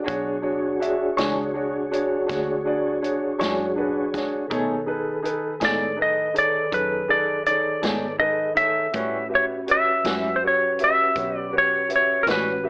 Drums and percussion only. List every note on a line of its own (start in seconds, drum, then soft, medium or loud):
0.08 kick medium
0.08 closed hi-hat medium
0.82 closed hi-hat medium
1.18 snare loud
1.18 closed hi-hat medium
1.93 closed hi-hat medium
2.29 kick medium
2.29 snare soft
2.29 closed hi-hat medium
3.04 closed hi-hat soft
3.41 snare loud
3.41 closed hi-hat medium
4.14 kick medium
4.14 snare soft
4.14 closed hi-hat medium
4.51 kick medium
4.51 closed hi-hat medium
5.25 closed hi-hat medium
5.61 snare medium
5.61 closed hi-hat medium
6.36 closed hi-hat medium
6.72 kick medium
6.72 closed hi-hat medium
7.46 closed hi-hat medium
7.83 snare medium
7.83 closed hi-hat medium
8.56 kick medium
8.56 closed hi-hat medium
8.93 kick medium
8.93 closed hi-hat medium
9.68 closed hi-hat medium
10.04 snare medium
10.04 closed hi-hat medium
10.79 closed hi-hat medium
11.16 kick medium
11.16 closed hi-hat medium
11.90 closed hi-hat soft
12.27 snare loud
12.27 closed hi-hat medium